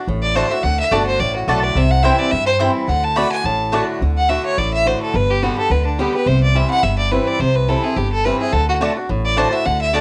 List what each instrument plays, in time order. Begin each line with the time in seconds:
0.07 upright bass A1, steel-string acoustic guitar A2
0.22 fiddle D5
0.36 steel-string acoustic guitar D3 A3 D4 F#4, mandolin A3 F#4 D5 A5, fiddle C5
0.52 steel-string acoustic guitar D4 F#4, fiddle E5
0.63 upright bass D2, steel-string acoustic guitar D3, fiddle F#5
0.80 fiddle E5
0.91 upright bass G1, steel-string acoustic guitar D3 A3 D4 F#4, mandolin A3 F#4 D5 A5, fiddle D5
1.07 fiddle C5
1.20 upright bass A1, steel-string acoustic guitar A2, fiddle D5
1.36 fiddle F#4
1.48 upright bass B1, steel-string acoustic guitar D3 A3 D4 F#4, mandolin A3 F#4 D5 A5, fiddle A4
1.63 fiddle D5
1.75 upright bass C2, steel-string acoustic guitar C3, fiddle E5
1.91 fiddle F#5
2.03 steel-string acoustic guitar E3 G3 C4 E4, mandolin C4 E4 C5 G5, fiddle E5
2.18 fiddle D5
2.31 upright bass G2, steel-string acoustic guitar G2, fiddle E5
2.46 fiddle C5
2.59 steel-string acoustic guitar E3 G3 C4 E4, mandolin C4 E4 C5 G5
2.88 upright bass D2, steel-string acoustic guitar D3, fiddle F#5
3.04 fiddle A5
3.16 steel-string acoustic guitar D3 A3 D4 F#4, mandolin A3 F#4 D5 A5, fiddle B5
3.32 fiddle G#5
3.44 upright bass A1, steel-string acoustic guitar A2, fiddle A5
3.72 steel-string acoustic guitar D3 A3 D4 F#4, mandolin A3 F#4 D5 A5
4.01 upright bass D2, steel-string acoustic guitar D3
4.17 fiddle F#5
4.29 steel-string acoustic guitar D3 A3 D4 F#4, fiddle E5
4.46 fiddle C#5
4.58 upright bass A1, steel-string acoustic guitar A2, fiddle D5
4.74 fiddle E5
4.86 steel-string acoustic guitar D3 A3 D4 F#4, fiddle C5
5.02 fiddle A4
5.14 upright bass G1, steel-string acoustic guitar G2, fiddle B4
5.31 fiddle G4
5.43 steel-string acoustic guitar D3 G3 B3 G4, fiddle F#4
5.58 steel-string acoustic guitar B3 G4, fiddle A4
5.70 upright bass D2, steel-string acoustic guitar D3, fiddle B4
5.86 fiddle D4
5.99 steel-string acoustic guitar D3 G3 B3 G4, fiddle G4
6.14 steel-string acoustic guitar B3 G4, fiddle B4
6.26 upright bass C2, steel-string acoustic guitar C3, fiddle C5
6.43 fiddle D5
6.55 steel-string acoustic guitar E3 G3 C4 E4, fiddle E5
6.71 fiddle F#5
6.83 upright bass G1, steel-string acoustic guitar G2, fiddle E5
6.98 fiddle D5
7.11 steel-string acoustic guitar E3 G3 C4 E4, fiddle B4
7.27 fiddle D5
7.40 upright bass C2, steel-string acoustic guitar C3, fiddle C5
7.56 fiddle B4
7.68 steel-string acoustic guitar E3 G3 C4 E4, fiddle A4
7.84 steel-string acoustic guitar C4 E4, fiddle G#4
7.96 upright bass G1, steel-string acoustic guitar G2, fiddle G4
8.12 fiddle A4
8.25 steel-string acoustic guitar E3 G3 C4 E4, fiddle B4
8.40 steel-string acoustic guitar C4 E4, fiddle G#4
8.52 upright bass D2, steel-string acoustic guitar D3, fiddle A4
8.69 fiddle F#4
8.81 steel-string acoustic guitar D3 A3 D4 F#4, mandolin A3 F#4 D5 A5
8.97 steel-string acoustic guitar D4 F#4
9.09 upright bass A1, steel-string acoustic guitar A2
9.25 fiddle D5
9.37 steel-string acoustic guitar D3 A3 D4 F#4, mandolin A3 F#4 D5 A5, fiddle C5
9.53 steel-string acoustic guitar D4 F#4, fiddle E5
9.65 upright bass D2, steel-string acoustic guitar D3, fiddle F#5
9.82 fiddle E5
9.93 steel-string acoustic guitar D3 A3 D4 F#4, mandolin A3 F#4 D5 A5, fiddle D5